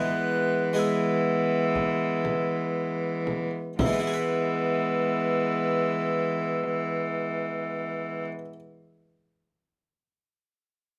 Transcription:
Already playing: cello E3, harpsichord E3 G#3 B3 G#4, viola G#3, violin B3, flute F#6
0.73 harpsichord G#3 B3 G#4, violin B3
0.77 viola G#3, flute E6
1.75 frame drum
2.25 frame drum
3.27 frame drum
3.79 harpsichord E3, cello E3, viola G#3, violin B3, flute E6, frame drum
3.86 harpsichord G#3
3.93 harpsichord B3
3.99 harpsichord E4
4.07 harpsichord G#4
4.14 harpsichord B4

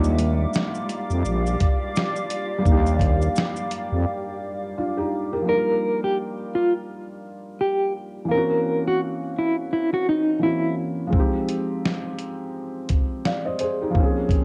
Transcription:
Already playing: fm bass D#2, felt piano G3 A#3 D4 D#4 F4, ambient pad G4 D5 F5 D6
0.04 shaker
0.19 closed hi-hat, shaker
0.53 snare, shaker
0.75 shaker
0.89 closed hi-hat, shaker
1.10 fm bass F2, shaker
1.25 fm bass A#1, shaker
1.46 shaker
1.60 kick, closed hi-hat, shaker
1.96 snare, shaker
2.16 shaker
2.30 closed hi-hat, shaker
2.59 felt piano G3 A#3
2.65 fm bass D#2, felt piano D4 D#4, kick, shaker
2.72 felt piano G4
2.86 shaker
2.99 kick, closed hi-hat, shaker
3.22 shaker
3.36 snare, shaker
3.56 shaker
3.71 closed hi-hat, shaker
3.92 fm bass F2
4.78 felt piano D4 F4
4.97 felt piano D#4 G4
5.33 felt piano G4 A#4
5.42 felt piano F3 A#3
5.48 felt piano G3 D4 D#4, clean electric guitar A#4
5.54 felt piano F4
6.04 clean electric guitar G4
6.55 clean electric guitar F4
7.61 clean electric guitar G4
8.25 felt piano E3 A#3
8.31 felt piano C4 C#4, clean electric guitar A#4
8.38 felt piano F#4
8.88 clean electric guitar F#4
9.39 clean electric guitar E4
9.73 clean electric guitar E4
9.94 clean electric guitar F#4
10.09 clean electric guitar D#4
10.39 felt piano E3 A#3 C4, clean electric guitar E4
10.44 felt piano C#4 F#4
11.07 felt piano F3 G#3
11.13 felt piano C4 D#4, kick
11.20 felt piano G4
11.49 closed hi-hat
11.86 snare
12.19 closed hi-hat
12.89 kick, closed hi-hat
13.25 felt piano D5 F5, snare
13.45 felt piano C5 D#5
13.59 felt piano G#4 C5, closed hi-hat
13.82 felt piano D#4 G4
13.90 felt piano F3 A#3
13.95 felt piano C4, kick
14.00 felt piano C#4 G#4
14.29 kick, closed hi-hat

